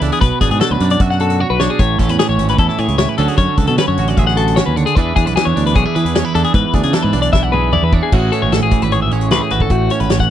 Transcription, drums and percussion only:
0.01 closed hi-hat
0.12 closed hi-hat
0.21 kick, closed hi-hat
0.41 kick, closed hi-hat
0.51 closed hi-hat
0.60 snare, closed hi-hat
0.80 closed hi-hat
0.90 closed hi-hat
1.00 kick, closed hi-hat
1.10 snare
1.20 closed hi-hat
1.30 closed hi-hat
1.40 high tom
1.60 snare
1.79 kick, closed hi-hat
1.99 kick, closed hi-hat
2.09 closed hi-hat
2.19 snare, closed hi-hat
2.39 closed hi-hat
2.48 closed hi-hat
2.58 kick, closed hi-hat
2.68 snare
2.78 closed hi-hat
2.88 closed hi-hat
2.98 snare, closed hi-hat
3.18 closed hi-hat
3.28 closed hi-hat
3.37 kick, closed hi-hat
3.57 kick, closed hi-hat
3.67 closed hi-hat
3.78 snare, closed hi-hat
3.97 closed hi-hat
4.08 closed hi-hat
4.17 kick, closed hi-hat
4.28 snare
4.37 closed hi-hat
4.48 closed hi-hat
4.57 snare, closed hi-hat
4.77 closed hi-hat
4.87 closed hi-hat
4.97 kick, closed hi-hat
5.16 kick, closed hi-hat
5.27 closed hi-hat
5.37 snare, closed hi-hat
5.57 closed hi-hat
5.67 closed hi-hat
5.76 kick, closed hi-hat
5.96 closed hi-hat
6.06 closed hi-hat
6.15 snare, closed hi-hat
6.35 closed hi-hat
6.44 closed hi-hat
6.54 kick, closed hi-hat
6.73 kick, closed hi-hat
6.83 closed hi-hat
6.93 snare, closed hi-hat
7.13 closed hi-hat
7.22 closed hi-hat
7.33 kick, snare
7.53 mid tom
7.73 mid tom
7.93 kick
8.12 kick, crash
8.32 closed hi-hat
8.52 snare, closed hi-hat
8.71 kick, closed hi-hat
8.82 closed hi-hat
8.92 closed hi-hat
9.11 closed hi-hat
9.21 closed hi-hat
9.31 snare, closed hi-hat
9.50 closed hi-hat
9.60 kick
9.70 kick, closed hi-hat
9.90 closed hi-hat
10.00 closed hi-hat
10.10 snare, closed hi-hat
10.20 kick, snare

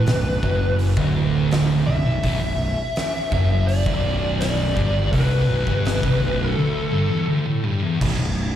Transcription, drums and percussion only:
0.06 snare, open hi-hat
0.43 kick
0.79 open hi-hat
0.97 kick
1.51 snare, open hi-hat
2.24 kick, open hi-hat
2.96 snare, open hi-hat
3.32 kick
3.68 open hi-hat
3.86 kick
4.41 snare, open hi-hat
4.77 kick
5.13 kick, open hi-hat
5.67 kick
5.85 snare, open hi-hat
6.03 kick
8.01 kick, crash

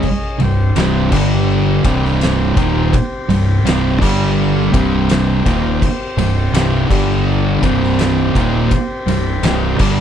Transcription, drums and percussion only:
0.03 kick, crash
0.40 ride
0.76 snare, ride
1.12 kick, snare, crash
1.84 kick, ride
2.05 snare
2.21 snare, ride
2.57 kick, ride
2.93 kick, ride
3.30 ride
3.66 snare, ride
4.02 kick, crash
4.74 kick, ride
5.09 snare, ride
5.46 kick, ride
5.82 kick, crash
6.18 ride
6.54 snare, ride
6.91 kick, crash
7.63 kick, ride
7.83 snare
7.99 snare, ride
8.35 kick, ride
8.71 kick, ride
9.08 ride
9.43 snare, ride
9.79 kick, crash

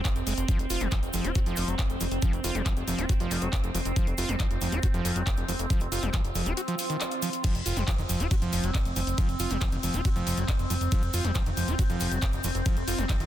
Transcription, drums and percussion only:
0.05 kick, clap, closed hi-hat, cabasa
0.16 closed hi-hat, cabasa
0.27 open hi-hat, cabasa
0.38 closed hi-hat, cabasa
0.48 kick, closed hi-hat, cabasa
0.59 closed hi-hat, cabasa
0.70 open hi-hat, cabasa
0.80 closed hi-hat, cabasa
0.92 kick, clap, closed hi-hat, cabasa
1.03 closed hi-hat, cabasa
1.13 open hi-hat, cabasa
1.24 closed hi-hat, cabasa
1.35 kick, closed hi-hat, cabasa
1.46 closed hi-hat, cabasa
1.56 open hi-hat, cabasa
1.68 closed hi-hat, cabasa
1.79 kick, clap, closed hi-hat, cabasa
1.90 closed hi-hat, cabasa
2.00 open hi-hat, cabasa
2.11 closed hi-hat, cabasa
2.22 kick, closed hi-hat, cabasa
2.33 closed hi-hat, cabasa
2.44 open hi-hat, cabasa
2.55 closed hi-hat, cabasa
2.66 kick, clap, closed hi-hat, cabasa
2.77 closed hi-hat, cabasa
2.88 open hi-hat, cabasa
2.98 closed hi-hat, cabasa
3.09 kick, closed hi-hat, cabasa
3.20 closed hi-hat, cabasa
3.31 open hi-hat, cabasa
3.42 closed hi-hat, cabasa
3.53 kick, clap, closed hi-hat, cabasa
3.64 closed hi-hat, cabasa
3.75 open hi-hat, cabasa
3.85 closed hi-hat, cabasa
3.96 kick, closed hi-hat, cabasa
4.07 closed hi-hat, cabasa
4.18 open hi-hat, cabasa
4.29 closed hi-hat, cabasa
4.39 kick, clap, closed hi-hat, cabasa
4.51 closed hi-hat, cabasa
4.61 open hi-hat, cabasa
4.72 closed hi-hat, cabasa
4.83 kick, closed hi-hat, cabasa
4.94 closed hi-hat, cabasa
5.05 open hi-hat, cabasa
5.16 closed hi-hat, cabasa
5.27 kick, clap, closed hi-hat, cabasa
5.37 closed hi-hat, cabasa
5.48 open hi-hat, cabasa
5.59 closed hi-hat, cabasa
5.70 kick, closed hi-hat, cabasa
5.80 closed hi-hat, cabasa
5.92 open hi-hat, cabasa
6.02 closed hi-hat, cabasa
6.13 kick, clap, closed hi-hat, cabasa
6.25 closed hi-hat, cabasa
6.35 open hi-hat, cabasa
6.46 closed hi-hat, cabasa
6.57 closed hi-hat, cabasa
6.68 closed hi-hat, cabasa
6.79 open hi-hat, cabasa
6.90 closed hi-hat, cabasa
7.01 clap, closed hi-hat, cabasa
7.11 closed hi-hat, cabasa
7.22 open hi-hat, cabasa
7.33 closed hi-hat, cabasa
7.44 kick, closed hi-hat, crash, ride, cabasa
7.55 closed hi-hat, cabasa
7.66 open hi-hat, cabasa
7.77 closed hi-hat, cabasa
7.88 kick, clap, closed hi-hat, ride, cabasa
7.98 closed hi-hat, cabasa
8.09 open hi-hat, cabasa
8.20 closed hi-hat, cabasa
8.31 kick, closed hi-hat, ride, cabasa
8.42 closed hi-hat, cabasa
8.53 open hi-hat, cabasa
8.63 closed hi-hat, cabasa
8.75 kick, clap, closed hi-hat, ride, cabasa
8.85 closed hi-hat, cabasa
8.96 open hi-hat, cabasa
9.07 closed hi-hat, cabasa
9.18 kick, closed hi-hat, ride, cabasa
9.29 closed hi-hat, cabasa
9.39 open hi-hat, cabasa
9.50 closed hi-hat, cabasa
9.61 kick, clap, closed hi-hat, ride, cabasa
9.72 closed hi-hat, cabasa
9.83 open hi-hat, cabasa
9.94 closed hi-hat, cabasa
10.05 kick, closed hi-hat, ride, cabasa
10.16 closed hi-hat, cabasa
10.27 open hi-hat, cabasa
10.37 closed hi-hat, cabasa
10.48 kick, clap, closed hi-hat, ride, cabasa
10.59 closed hi-hat, cabasa
10.70 open hi-hat, cabasa
10.81 closed hi-hat, cabasa
10.92 kick, closed hi-hat, ride, cabasa
11.02 closed hi-hat, cabasa
11.13 open hi-hat, cabasa
11.24 closed hi-hat, cabasa
11.35 kick, clap, closed hi-hat, ride, cabasa
11.46 closed hi-hat, cabasa
11.57 open hi-hat, cabasa
11.68 closed hi-hat, cabasa
11.79 kick, closed hi-hat, ride, cabasa
11.90 closed hi-hat, cabasa
12.00 open hi-hat, cabasa
12.12 closed hi-hat, cabasa
12.22 kick, clap, closed hi-hat, ride, cabasa
12.33 closed hi-hat, cabasa
12.44 open hi-hat, cabasa
12.55 closed hi-hat, cabasa
12.66 kick, closed hi-hat, ride, cabasa
12.77 closed hi-hat, cabasa
12.88 open hi-hat, cabasa
12.98 closed hi-hat, cabasa
13.09 kick, clap, closed hi-hat, ride, cabasa
13.20 closed hi-hat, cabasa

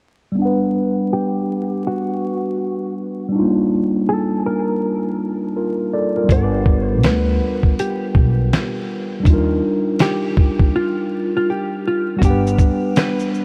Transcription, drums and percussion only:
6.29 kick, closed hi-hat
6.66 kick
7.03 snare, closed hi-hat
7.63 kick
7.79 closed hi-hat
8.15 kick
8.53 snare, closed hi-hat
9.25 kick, closed hi-hat
9.99 snare, closed hi-hat
10.37 kick
10.59 kick
12.22 kick, closed hi-hat, shaker
12.47 shaker
12.58 kick, shaker
12.96 snare, closed hi-hat, shaker
13.20 shaker
13.34 shaker

